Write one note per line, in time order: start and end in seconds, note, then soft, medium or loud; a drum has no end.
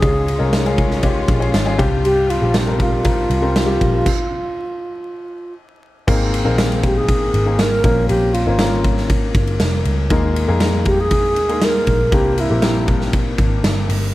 0.00 0.38 C#2 medium
0.00 0.74 G#2 medium
0.00 1.77 G#3 medium
0.00 0.34 G#3 medium
0.00 1.77 C#4 medium
0.00 0.34 C#4 medium
0.00 0.34 F4 medium
0.00 4.02 F4 medium
0.00 0.79 G#4 loud
0.00 0.34 G#4 medium
0.00 kick loud
0.00 ride medium
0.28 ride medium
0.38 1.24 C2 medium
0.38 0.60 G#3 medium
0.38 0.60 C#4 medium
0.38 0.60 F4 medium
0.38 0.61 A#4 medium
0.53 snare loud
0.53 ride medium
0.66 0.97 G#3 medium
0.66 0.97 C#4 medium
0.66 0.97 F4 medium
0.66 0.98 G#4 medium
0.66 ride soft
0.78 kick medium
0.78 ride medium
0.90 snare soft
1.03 1.35 G#3 medium
1.03 1.35 C#4 medium
1.03 1.35 F4 medium
1.03 1.35 G4 medium
1.03 kick medium
1.03 ride medium
1.28 1.52 A#1 medium
1.28 kick loud
1.28 ride medium
1.40 1.62 G#3 medium
1.40 1.62 C#4 medium
1.40 1.62 F4 medium
1.40 1.62 G#4 medium
1.40 ride soft
1.54 1.77 G#1 medium
1.54 snare loud
1.54 ride medium
1.65 1.78 G#3 medium
1.65 1.79 C#4 medium
1.65 1.77 F4 medium
1.65 1.79 G#4 medium
1.78 2.38 C2 medium
1.78 2.50 G2 medium
1.78 4.03 C3 medium
1.78 2.31 G3 medium
1.78 4.03 G3 medium
1.78 2.31 C4 medium
1.78 2.31 F4 medium
1.78 2.31 G4 loud
1.78 kick loud
1.78 ride medium
2.05 2.31 G4 loud
2.05 ride medium
2.30 2.59 F4 medium
2.30 ride medium
2.41 3.26 A#1 medium
2.41 2.63 G3 medium
2.41 2.63 C4 medium
2.41 2.63 F4 medium
2.41 2.63 G4 medium
2.54 2.81 G4 medium
2.54 snare loud
2.54 ride medium
2.66 2.98 G3 medium
2.66 2.98 C4 medium
2.66 2.98 F4 medium
2.66 2.99 A#4 medium
2.80 5.54 F4 medium
2.80 kick medium
2.80 ride medium
3.04 3.36 G3 medium
3.04 3.36 C4 medium
3.04 3.36 F4 medium
3.04 3.36 A#4 medium
3.04 kick medium
3.04 ride medium
3.30 3.77 C2 loud
3.30 ride soft
3.42 3.63 G3 medium
3.42 3.63 C4 medium
3.42 3.63 F4 medium
3.42 3.64 A#4 loud
3.56 snare loud
3.56 ride medium
3.66 3.98 G3 medium
3.66 3.99 C4 medium
3.66 3.99 F4 medium
3.66 3.99 G4 loud
3.81 4.04 A#1 medium
3.81 kick medium
3.81 ride medium
4.06 kick loud
4.06 crash medium
6.07 6.43 G#1 loud
6.07 6.79 G#2 medium
6.07 6.79 D#3 medium
6.07 6.39 A#3 medium
6.07 6.39 C4 medium
6.07 6.39 D#4 medium
6.07 6.39 G#4 medium
6.07 6.39 A#4 loud
6.07 kick loud
6.07 crash loud
6.34 ride medium
6.45 7.30 A#1 medium
6.45 7.29 A#3 medium
6.45 7.29 C4 medium
6.45 7.29 D#4 medium
6.45 7.29 G#4 medium
6.45 7.29 A#4 loud
6.58 snare loud
6.58 ride medium
6.72 ride soft
6.83 6.99 G4 medium
6.83 kick medium
6.83 ride medium
6.97 7.62 G#4 medium
7.08 kick loud
7.08 ride medium
7.34 7.80 G#1 medium
7.34 ride medium
7.46 7.82 A#3 medium
7.46 7.82 C4 medium
7.46 7.84 D#4 medium
7.46 7.84 G#4 medium
7.46 7.82 A#4 medium
7.59 8.08 A#4 loud
7.59 snare loud
7.59 ride medium
7.83 8.08 A#1 loud
7.83 8.55 A#2 medium
7.83 8.55 F3 medium
7.83 8.36 A#3 medium
7.83 8.36 C4 medium
7.83 8.37 C#4 medium
7.83 8.37 F4 medium
7.83 8.36 A#4 medium
7.83 kick loud
7.83 ride medium
8.09 8.44 A#1 loud
8.09 8.35 G4 loud
8.09 ride medium
8.34 8.84 F4 medium
8.34 ride medium
8.46 9.31 G#1 loud
8.46 8.57 A#3 medium
8.46 8.57 C4 medium
8.46 8.57 C#4 medium
8.46 8.57 F4 medium
8.46 8.57 A#4 medium
8.59 9.44 A#3 medium
8.59 9.43 C4 medium
8.59 9.44 C#4 medium
8.59 9.44 F4 medium
8.59 9.44 A#4 medium
8.59 snare loud
8.59 ride medium
8.84 kick medium
8.84 ride medium
8.97 snare soft
9.09 kick medium
9.09 ride medium
9.35 9.58 G1 medium
9.35 kick loud
9.35 ride medium
9.47 ride soft
9.60 9.84 F1 loud
9.60 snare loud
9.60 ride medium
9.85 10.09 C#2 loud
9.85 ride medium
10.10 10.46 D#2 loud
10.10 10.82 A#2 medium
10.10 10.42 G#3 medium
10.10 10.42 A#3 medium
10.10 10.42 D#4 medium
10.10 10.42 G#4 medium
10.10 10.42 A#4 loud
10.10 kick loud
10.10 ride medium
10.36 ride medium
10.47 11.36 F2 medium
10.47 11.32 G#3 medium
10.47 11.33 A#3 medium
10.47 11.33 D#4 medium
10.47 11.33 G#4 medium
10.47 11.33 A#4 loud
10.60 snare loud
10.60 ride medium
10.85 11.02 G4 loud
10.85 kick medium
10.85 ride medium
11.01 11.66 G#4 loud
11.11 kick medium
11.11 ride medium
11.36 11.83 D#2 loud
11.36 ride medium
11.49 12.02 G#3 medium
11.49 12.02 A#3 medium
11.49 12.02 D#4 medium
11.49 12.02 G#4 medium
11.49 12.02 A#4 medium
11.49 ride soft
11.62 12.15 A#4 loud
11.62 snare loud
11.62 ride medium
11.87 12.13 A#1 medium
11.87 kick medium
11.87 ride medium
12.12 12.48 C2 loud
12.12 12.84 G2 medium
12.12 12.44 A#3 medium
12.12 12.44 C4 medium
12.12 12.44 E4 medium
12.12 12.44 G4 medium
12.12 12.41 G4 loud
12.12 12.44 A#4 medium
12.12 kick loud
12.12 ride medium
12.38 12.89 E4 medium
12.38 ride medium
12.50 13.35 A#1 medium
12.50 12.61 A#3 medium
12.50 12.60 C4 medium
12.50 12.61 E4 medium
12.50 12.61 G4 medium
12.50 12.61 A#4 medium
12.62 13.47 A#3 medium
12.62 13.47 C4 medium
12.62 13.47 E4 medium
12.62 13.47 G4 medium
12.62 13.47 A#4 medium
12.62 snare loud
12.62 ride medium
12.88 kick medium
12.88 ride medium
13.01 snare soft
13.13 kick loud
13.13 ride medium
13.38 13.62 G#1 medium
13.38 kick loud
13.38 ride medium
13.63 13.87 G1 loud
13.63 snare loud
13.63 ride medium
13.89 14.12 G1 medium
13.89 open hi-hat medium
13.89 ride medium